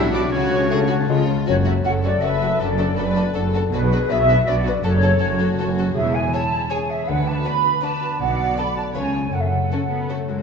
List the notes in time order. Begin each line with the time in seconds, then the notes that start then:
Already playing: B1 B2 D4 E4
0.04 B3
0.13 G3 D4 E4 F#4 D5
0.24 D4
0.32 C#2 C#3 C#4 F#4 C#5
0.42 A3
0.52 C#4
0.62 F#4
0.71 A3 F#4 G#4 A4
0.81 C#5
0.89 F#4 F#5
1.00 A5
1.08 C#2 C#3 G#3 F4
1.18 G#3
1.28 C#4
1.38 F4
1.47 F#1 F#2 A3 C#4 F#4 C#5
1.66 C#3 A3 C#4 F#4 E5
1.85 F#1 F#2 A3 C#4 F#4 A4 F#5
2.03 A3 C#4 F#4 D5
2.21 F#1 F#2 A3 C#4 F#4 A4 B4 E5
2.42 A3 C#4 F#4
2.60 F#1 F#2 D4 F#4 A4 D5
2.78 F#3 D4 F#4 A4
2.97 F#1 F#2 A3 D4 F#4 A4 B4
3.16 D4 F#4 A4
3.34 F#1 F#2 D4 F#4 A4
3.53 D4 F#4 A4
3.72 B1 B2 D4 F#4 G#4 B4
3.91 F#3 D4 F#4 B4
4.09 B1 B2 B3 D4 F#4 B4 E5
4.28 D4 F#4 B4
4.47 B1 B2 D4 F#4 B4 D5
4.65 D4 F#4 B4
4.83 F#1 F#2 C#4 F#4 A4 C#5
5.03 C#3 C#4 F#4 A4
5.20 F#1 F#2 A3 C#4 F#4 A4
5.40 C#4 F#4 A4
5.58 F#1 F#2 C#4 F#4 A4 C#5
5.78 C#4 F#4 A4
5.96 E1 E2 E3 G#4 E5
6.14 E4 G#5
6.33 G#3 C#4 E4 G#4 C#5 A5
6.53 G#4
6.70 C#4 G#4 C#5 G#5
6.89 G#4 E5
7.08 D2 D3 B4 F#5
7.26 D4 A5
7.45 B3 D4 F#4 B4 B5
7.64 F#4
7.81 D4 F#4 B4 D5 A5
8.01 F#4
8.19 B1 B2 D5 F#5
8.38 F#3
8.57 A3 D4 F#4 A4 B5
8.75 F#4 A5
8.94 C#2 C#3 C#4 F4 B4 C#5 G#5
9.13 F4 C#5
9.32 F#1 F#2 A4 F#5
9.40 E5
9.47 F#5
9.51 C#3
9.71 A3 C#4 F#4 A4
9.89 B3 F#4
10.09 A3 C#4 F#4 A4 C#5
10.28 F#2 G#3 F#4
10.33 A3
10.38 F#4